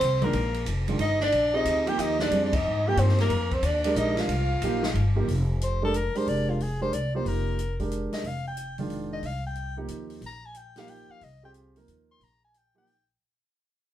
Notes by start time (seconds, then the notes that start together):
Already playing: C4 C5
0.00 C2, hi-hat pedal, ride
0.21 D#3 G#3 A#3 D4 F4 A#4, ride
0.33 A#1, ride
0.54 ride
0.66 F1, hi-hat pedal, ride
0.88 D#3 G#3 D4 F4, ride
0.99 G1 D#4 D#5, ride
1.20 D4, snare
1.24 D5
1.32 A#1, ride
1.53 C4 D#4 F4 G4 G#4 D#5
1.65 D2, hi-hat pedal, ride
1.86 F3 A#3 D#4 G4 G5, ride
1.98 D#2 D#4 D#5, hi-hat pedal, ride
2.19 D4 D5, snare
2.31 F2 G3 C4 F4 G#4, ride
2.44 D4 D5
2.53 D#4 D#5, kick, ride
2.64 G#2
2.87 F3 A#3 D#4 G4 G5
2.97 G2 C4 C5, hi-hat pedal, ride
3.08 snare
3.18 A#3 A#4, snare, ride
3.30 F2, ride
3.51 C4 C5, kick, ride
3.62 D#2 D4, hi-hat pedal, ride
3.66 D5
3.84 G#3 D4 G4 A#4, ride
3.95 A#1 D#4 D#5, hi-hat pedal
4.17 F4 F5, snare, ride
4.28 C2, ride
4.62 A#1 F3 A#3 D#4 G4, hi-hat pedal, ride
4.83 snare
4.94 G1, ride
5.15 F3 A#3 D#4 G4
5.28 F1, open hi-hat
5.61 C5, closed hi-hat
5.82 G#3 D4 G4 A4 A#4
5.94 A#4, closed hi-hat
6.15 G#3 D4 G4 A#4 C5, open hi-hat
6.27 F1 D5, open hi-hat
6.50 F4
6.60 G#4, open hi-hat
6.81 G#3 D4 G4 A#4 C5
6.92 C2 D5, closed hi-hat
7.14 F3 A#3 D#4 G4 C5
7.25 F1 A#4, open hi-hat
7.59 closed hi-hat
7.79 G#3 D4 G4 A#4, kick, open hi-hat
7.91 closed hi-hat
8.13 D#5, snare, open hi-hat
8.24 F1 F5, open hi-hat
8.48 G5
8.57 closed hi-hat
8.78 D#3 G#3 D4 F4, open hi-hat
8.90 open hi-hat
9.13 D#5
9.23 C2 F5, open hi-hat
9.47 G5
9.55 closed hi-hat
9.77 F3 A#3 D#4 G4
9.88 D#2, closed hi-hat
10.10 open hi-hat
10.21 A#1, open hi-hat
10.26 A#5
10.46 G#5
10.55 G5, closed hi-hat
10.76 F3 A#3 D#4 G4 F5, snare, open hi-hat
10.88 G5, open hi-hat
11.09 F5, muted upright bass stroke
11.21 C2 D#5, open hi-hat
11.43 C4 F4 G4 G#4 G5
11.54 closed hi-hat
11.76 F3 A#3 D#4 A#4, open hi-hat
11.88 D#2, closed hi-hat
12.12 C6
12.20 A#1 A#5, open hi-hat
12.45 G#5
12.54 G5, closed hi-hat
12.74 F3 A#3 D#4 G4 G5
12.87 open hi-hat